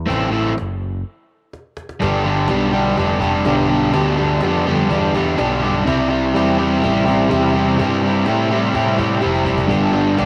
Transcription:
0.06 overdriven electric guitar A2 E3 A3 C4 E4
0.10 picked electric bass A1, cajon bass
0.31 overdriven electric guitar A2 E3 A3 C4 E4
0.58 picked electric bass F#1, cajon slap
0.83 cajon slap
1.53 cajon slap
1.77 cajon slap
1.89 cajon slap
2.00 picked electric bass G1, overdriven electric guitar G2 D3 G3 B3 D4 G4, cajon bass
2.24 overdriven electric guitar G3 B3 D4 G4
2.48 picked electric bass B1, overdriven electric guitar G3 B3 D4 G4, cajon slap
2.73 overdriven electric guitar G2 D3 G3 B3 D4 G4, cajon slap
2.97 picked electric bass F1, overdriven electric guitar G3 B3 D4 G4, cajon bass, cajon slap
3.20 overdriven electric guitar G3 B3 D4 G4, cajon bass
3.45 picked electric bass B1, overdriven electric guitar G2 D3 G3 B3 D4 G4, cajon slap
3.69 overdriven electric guitar G3 B3 D4 G4, cajon slap
3.92 picked electric bass D2, overdriven electric guitar G2 D3 G3 B3 D4 G4, cajon bass
4.17 overdriven electric guitar G3 B3 D4 G4
4.41 picked electric bass F2, overdriven electric guitar G3 B3 D4, cajon slap
4.45 overdriven electric guitar G4
4.67 overdriven electric guitar G2 D3 G3 B3 D4 G4
4.90 picked electric bass E2, overdriven electric guitar G3 B3 D4 G4, cajon bass, cajon slap
5.14 overdriven electric guitar G3 B3 D4 G4, cajon bass
5.37 picked electric bass B1, overdriven electric guitar G2 D3 G3 B3 D4 G4, cajon slap
5.62 overdriven electric guitar G3 B3 D4 G4
5.85 picked electric bass C2, overdriven electric guitar C3 G3 C4 E4 G4, cajon bass
6.09 overdriven electric guitar C4 E4 G4
6.34 picked electric bass E2, overdriven electric guitar G3 C4 E4 G4, cajon slap
6.58 overdriven electric guitar C3 G3 C4 E4 G4
6.82 picked electric bass A1, overdriven electric guitar G3 C4 E4 G4, cajon bass, cajon slap
7.05 overdriven electric guitar C4 E4 G4, cajon bass
7.30 picked electric bass E2, overdriven electric guitar C3 G3 C4 E4 G4, cajon slap
7.53 overdriven electric guitar C4 E4 G4, cajon slap
7.79 picked electric bass G2, overdriven electric guitar C3 G3 C4 E4 G4, cajon bass
8.04 overdriven electric guitar C4 E4 G4
8.26 picked electric bass A2, overdriven electric guitar G3 C4 E4 G4, cajon slap
8.50 overdriven electric guitar C3 G3 C4 E4 G4, cajon slap
8.74 picked electric bass A2, overdriven electric guitar G3 C4 E4 G4, cajon bass, cajon slap
8.98 overdriven electric guitar C4 E4 G4, cajon bass
9.21 overdriven electric guitar C3 G3 C4 E4 G4, cajon slap
9.25 picked electric bass F1
9.34 cajon slap
9.45 overdriven electric guitar C4 E4 G4, cajon bass
9.58 cajon bass
9.67 overdriven electric guitar G2 D3 G3 B3 D4 G4, cajon bass
9.71 picked electric bass G1
9.92 overdriven electric guitar G3 B3 D4 G4
10.17 picked electric bass B1, overdriven electric guitar G3 B3 D4 G4, cajon slap

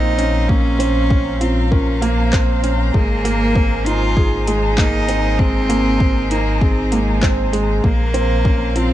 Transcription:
Already playing: sub bass A#1, felt piano A#3 C4 C#4 F4 A#4, cello D#4, string quartet C5 F5 A#5
0.18 felt piano C#4, closed hi-hat
0.49 felt piano A#3, cello C#4, kick
0.79 felt piano C4, closed hi-hat
1.10 felt piano C#4, kick
1.41 cello C4, felt piano F4, closed hi-hat
1.71 cello C#4, felt piano A#4, kick
2.02 felt piano A#3, cello A#3, closed hi-hat
2.33 felt piano C4, kick, clap
2.63 felt piano C#4, closed hi-hat
2.94 sub bass G#1, felt piano G#3, cello A#3, string quartet D#4 G#5, kick
3.25 felt piano A#3, closed hi-hat
3.55 felt piano C4, kick
3.86 felt piano D#4, cello F4, closed hi-hat
4.17 felt piano G#4, kick
4.47 felt piano G#3, closed hi-hat
4.78 felt piano A#3, cello D#4, kick, clap
5.09 felt piano C4, closed hi-hat
5.39 felt piano G#3, cello C4, kick
5.69 felt piano A#3, closed hi-hat
6.00 felt piano C4, kick
6.31 cello A#3, felt piano D#4, closed hi-hat
6.61 cello C4, felt piano G#4, kick
6.92 cello G#3, felt piano A#3, closed hi-hat
7.23 felt piano C4, kick, clap
7.53 felt piano G#3, closed hi-hat
7.83 sub bass A#1, cello A#3, felt piano A#3, string quartet C5 F5, kick
8.14 felt piano C4, closed hi-hat
8.44 felt piano C#4, kick
8.75 cello C4, felt piano F4, closed hi-hat

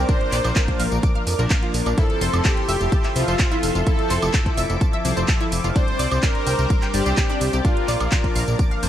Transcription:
Already playing: analog synth pad D5 D6
0.09 analog polysynth F3 A#3 D4 A#4, synth pluck D4, analog synth pad A#4, supersaw synth C5, kick, closed hi-hat, tambourine
0.21 closed hi-hat
0.32 analog synth bass A#1, synth pluck D5, clap, open hi-hat, tambourine
0.44 analog synth bass A#1, analog polysynth F3 A#3 D4 A#4, closed hi-hat, tambourine, high woodblock
0.56 synth pluck A#4, kick, clap, closed hi-hat, tambourine
0.68 kick, closed hi-hat
0.79 analog synth bass A#1, synth pluck F5, open hi-hat, tambourine
0.92 analog synth bass A#1, closed hi-hat, tambourine
1.03 synth pluck D6, kick, closed hi-hat, tambourine
1.15 synth pluck F5, closed hi-hat
1.27 analog synth bass F2, open hi-hat, tambourine
1.39 analog synth bass A#1, analog polysynth F3 A#3 D4 A#4, synth pluck A#4, closed hi-hat, tambourine
1.50 synth pluck F5, kick, clap, closed hi-hat, tambourine
1.63 synth pluck F4, closed hi-hat
1.74 analog synth bass A#1, open hi-hat, tambourine
1.86 analog synth bass A#1, synth pluck D4, closed hi-hat, tambourine, high woodblock
1.98 analog polysynth F3 C4 E4 A4, synth pluck E4, analog synth pad A4 E5 C6, supersaw synth A4, kick, closed hi-hat, tambourine
2.10 closed hi-hat
2.21 analog synth bass F1, synth pluck C5, open hi-hat, tambourine
2.33 analog synth bass F1, analog polysynth F3 C4 E4 A4, closed hi-hat, tambourine, high woodblock
2.45 supersaw synth G4, synth pluck A4, kick, clap, closed hi-hat, tambourine
2.57 closed hi-hat
2.69 analog synth bass F1, synth pluck E5, open hi-hat, tambourine
2.81 analog synth bass F1, closed hi-hat, tambourine
2.92 synth pluck A5, kick, closed hi-hat, tambourine
3.04 synth pluck E5, clap, closed hi-hat
3.16 analog synth bass C2, analog polysynth F3 C4 E4 C5, supersaw synth F4, open hi-hat, tambourine
3.28 analog synth bass F1, analog polysynth F3 C4 A4 E5, synth pluck C5, closed hi-hat, tambourine
3.39 kick, clap, closed hi-hat, tambourine
3.52 synth pluck E4, closed hi-hat
3.63 analog synth bass F1, open hi-hat, tambourine
3.75 analog synth bass F1, synth pluck F4, closed hi-hat, tambourine
3.87 analog polysynth F3 C4 E4 A4, synth pluck E4, supersaw synth A4, analog synth pad D6, kick, closed hi-hat, tambourine
3.99 closed hi-hat
4.10 analog synth bass F1, synth pluck C5, clap, open hi-hat, tambourine
4.22 analog synth bass F1, analog polysynth F3 C4 E4 A4, closed hi-hat, tambourine, high woodblock
4.33 synth pluck A4, kick, clap, closed hi-hat
4.46 kick, closed hi-hat
4.57 analog synth bass F1, synth pluck E5, open hi-hat, tambourine
4.70 analog synth bass F1, closed hi-hat, tambourine
4.81 synth pluck A5, kick, closed hi-hat, tambourine
4.93 synth pluck E5, closed hi-hat
5.05 analog synth bass C2, analog polysynth F3 C4 E4 C5, open hi-hat, tambourine
5.17 analog synth bass F1, analog polysynth F3 C4 E4 A4, synth pluck C5, closed hi-hat, tambourine
5.28 kick, clap, closed hi-hat, tambourine
5.40 synth pluck E4, closed hi-hat
5.52 analog synth bass F1, open hi-hat, tambourine
5.64 analog synth bass F1, synth pluck F4, closed hi-hat, tambourine
5.75 analog polysynth G3 C4 D4 C5, synth pluck D4, analog synth pad C5 D5 G5, supersaw synth C5, kick, closed hi-hat, tambourine
5.88 closed hi-hat
5.99 analog synth bass C2, synth pluck D5, open hi-hat, tambourine
6.11 analog synth bass C2, analog polysynth G3 C4 D4 C5, closed hi-hat, tambourine, high woodblock
6.23 supersaw synth A#4, synth pluck C5, kick, clap, closed hi-hat, tambourine
6.35 closed hi-hat
6.46 analog synth bass C2, synth pluck G5, open hi-hat, tambourine
6.59 analog synth bass C2, closed hi-hat, tambourine
6.70 synth pluck D6, kick, closed hi-hat, tambourine
6.82 synth pluck G5, clap, closed hi-hat
6.94 analog synth bass G1, analog polysynth G3 C4 D4 D5, supersaw synth G4, open hi-hat, tambourine
7.06 analog synth bass C2, analog polysynth G3 C4 D4 C5, synth pluck D5, closed hi-hat, tambourine
7.17 kick, clap, closed hi-hat, tambourine
7.29 synth pluck D4, closed hi-hat
7.41 analog synth bass C2, open hi-hat, tambourine
7.53 analog synth bass C2, synth pluck G4, closed hi-hat, tambourine
7.65 analog polysynth F3 A#3 D4 A#4, synth pluck D4, supersaw synth F4, analog synth pad A#4 D6, kick, closed hi-hat, tambourine
7.77 closed hi-hat
7.88 analog synth bass A#1, synth pluck D5, clap, open hi-hat, tambourine
8.00 analog synth bass A#1, analog polysynth F3 A#3 D4 A#4, closed hi-hat, tambourine, high woodblock
8.12 synth pluck A#4, kick, clap, closed hi-hat, tambourine
8.24 kick, closed hi-hat
8.35 analog synth bass A#1, synth pluck F5, open hi-hat, tambourine
8.48 analog synth bass A#1, closed hi-hat, tambourine
8.59 synth pluck D6, kick, closed hi-hat, tambourine
8.71 synth pluck F5, closed hi-hat
8.83 analog synth bass F1, analog polysynth F3 A#3 D4 C5, open hi-hat, tambourine

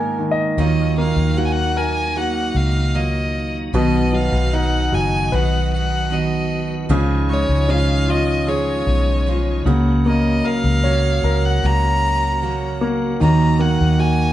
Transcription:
Already playing: grand piano G#2 D#3 G#3 A#3 G#5, steel-string acoustic guitar G#3 A#3 D#4 G#4, violin A#4
0.18 grand piano D#3
0.31 grand piano D#5
0.57 fingered electric bass D#2, steel-string acoustic guitar D#3 F#3 A#3 D#4 F4, grand piano D#3, tonewheel organ D#3 F#3 A#3 D#4, violin D#5
0.98 grand piano A#3, violin F5
1.17 fingered electric bass D#2
1.36 steel-string acoustic guitar F#3 A#3 D#4 F4, grand piano F#4, violin F#5
1.45 violin G#5
1.52 violin F#5
1.77 grand piano A#4, violin G#5
2.15 steel-string acoustic guitar F#3 A#3 D#4, grand piano F#4, violin F#5
2.55 fingered electric bass C#2, violin F5
2.94 steel-string acoustic guitar F#3 A#3 D#4 F4, violin D#5
3.73 fingered electric bass B1, steel-string acoustic guitar B2 D#3 B3 D#4 F#4, grand piano B2, tonewheel organ B3 F#4, violin D#5
4.13 grand piano F#3, violin F5
4.32 fingered electric bass B1
4.52 steel-string acoustic guitar D#3 B3 D#4 F#4, grand piano D#4, violin F#5
4.92 fingered electric bass F#1, grand piano F#4, violin G#5
5.31 fingered electric bass B1, steel-string acoustic guitar D#3 B3 D#4 F#4, grand piano B4, violin F#5
5.73 violin F#5
6.10 steel-string acoustic guitar D#3 B3 D#4 F#4, violin D#5
6.89 fingered electric bass C#2, steel-string acoustic guitar C#3 F3 G#3 D#4 F4, grand piano C#3, tonewheel organ G#3 C#4 F4
7.30 grand piano G#3, violin C#5
7.49 fingered electric bass C#2
7.68 steel-string acoustic guitar F3 G#3 D#4 F4, grand piano C#4, violin F5
8.08 grand piano F4, violin D#5
8.47 steel-string acoustic guitar F3 G#3 D#4 F4, grand piano G#4, violin C#5
8.87 fingered electric bass B1
9.26 steel-string acoustic guitar F3 G#3 D#4 F4
9.64 fingered electric bass C#2, tonewheel organ C#3 F#3 A#3 F#4, grand piano C#3, steel-string acoustic guitar C#3 F#3 A#3 C#4 F#4
10.06 grand piano A#3, violin D#5
10.44 grand piano A#4, violin F5
10.64 fingered electric bass C#2
10.84 steel-string acoustic guitar F#3 A#3 C#4 F#4, grand piano C#5
11.23 fingered electric bass C#2, grand piano A#4
11.45 violin F#5
11.63 fingered electric bass C#2, steel-string acoustic guitar F#3 A#3 C#4 F#4, violin A#5
12.42 steel-string acoustic guitar F#3 A#3 C#4 F#4
12.81 grand piano A#3
13.20 fingered electric bass D#2, grand piano D#3, tonewheel organ D#3 F#3 A#3 D#4, steel-string acoustic guitar D#3 F#3 A#3 D#4, violin A#5
13.59 grand piano A#3, violin F#5
13.81 fingered electric bass D#2
13.99 grand piano F#4, violin G#5

